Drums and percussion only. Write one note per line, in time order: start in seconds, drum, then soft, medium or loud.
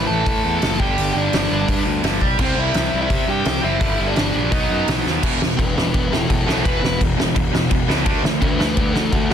0.26 kick loud
0.26 open hi-hat medium
0.62 snare loud
0.62 open hi-hat medium
0.80 kick loud
0.98 open hi-hat medium
1.33 snare loud
1.33 open hi-hat medium
1.68 kick loud
1.68 open hi-hat medium
2.04 snare loud
2.04 open hi-hat medium
2.21 kick medium
2.39 kick loud
2.39 crash loud
2.74 snare loud
2.74 open hi-hat medium
3.10 kick loud
3.10 open hi-hat medium
3.45 snare loud
3.45 open hi-hat medium
3.81 kick loud
3.81 open hi-hat medium
4.16 snare loud
4.16 open hi-hat medium
4.52 kick loud
4.52 open hi-hat medium
4.88 snare loud
4.88 open hi-hat medium
5.07 snare medium
5.23 kick loud
5.23 crash loud
5.23 crash medium
5.42 snare loud
5.59 kick loud
5.59 crash medium
5.78 snare loud
5.94 kick loud
5.94 crash medium
6.13 snare loud
6.30 kick loud
6.30 crash medium
6.49 snare loud
6.65 kick loud
6.65 crash medium
6.85 snare loud
7.01 kick loud
7.01 crash medium
7.20 snare loud
7.36 kick loud
7.36 crash medium
7.55 snare loud
7.71 kick loud
7.71 crash medium
7.90 snare loud
8.06 kick loud
8.06 crash medium
8.25 snare loud
8.42 kick loud
8.42 crash medium
8.60 snare loud
8.77 kick loud
8.77 crash medium
8.96 snare loud
9.12 kick loud
9.12 crash medium